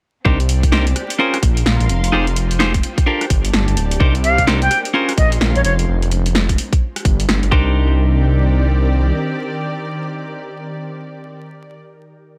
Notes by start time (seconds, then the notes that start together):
0.25 C2 C4 D4 D#4 G4 A#4 C5, kick
0.40 D5, closed hi-hat
0.49 open hi-hat
0.53 G4
0.63 kick, closed hi-hat
0.72 D4 D#4 G4 A#4 C5, snare
0.87 closed hi-hat
0.96 cross-stick, open hi-hat
1.10 closed hi-hat
1.19 C#4 F4 G#4 A#4 C5
1.34 cross-stick, closed hi-hat
1.43 A#1, kick, open hi-hat
1.56 F5, closed hi-hat
1.62 A#1 C6, snare
1.80 A#1, closed hi-hat
1.89 F1, open hi-hat
2.04 closed hi-hat
2.12 F1 D#4 F4 G4 G#4 C5
2.27 closed hi-hat
2.36 G5, open hi-hat
2.51 C5, closed hi-hat
2.59 D#4 F4 G4 G#4 C5, snare
2.74 kick, closed hi-hat
2.83 open hi-hat
2.98 kick, closed hi-hat
3.06 D4 F4 G4 A4 A#4
3.21 cross-stick, closed hi-hat
3.30 G1, kick, open hi-hat
3.45 D5, closed hi-hat
3.50 G1 A5, snare, open hi-hat
3.68 G1, closed hi-hat
3.77 D1, open hi-hat
3.91 closed hi-hat
4.00 C2 D4 D#4 G4 A#4 C5, kick
4.15 closed hi-hat
4.24 F5, open hi-hat
4.38 kick, closed hi-hat
4.47 D4 D#4 G4 A#4 C5, snare
4.62 G5, closed hi-hat
4.71 cross-stick, open hi-hat
4.85 closed hi-hat
4.94 G#3 C#4 F4 G#4 A#4 C5
5.09 cross-stick, closed hi-hat
5.18 A#1 D#5 C6, kick, open hi-hat
5.32 closed hi-hat
5.38 A#1 F5, snare
5.55 A#1 C#5, closed hi-hat
5.64 F1 C#5, open hi-hat
5.79 closed hi-hat
5.88 F1
6.02 closed hi-hat
6.11 open hi-hat
6.26 closed hi-hat
6.35 snare
6.49 kick, closed hi-hat
6.58 open hi-hat
6.73 kick, closed hi-hat
6.96 cross-stick, closed hi-hat
7.05 G1, kick, open hi-hat
7.20 closed hi-hat
7.29 G1, snare, open hi-hat
7.43 G1, closed hi-hat
7.51 C2 D#3 C4 D4 D#4 G4 A#4 C5 D5, kick
7.61 G4
7.92 D5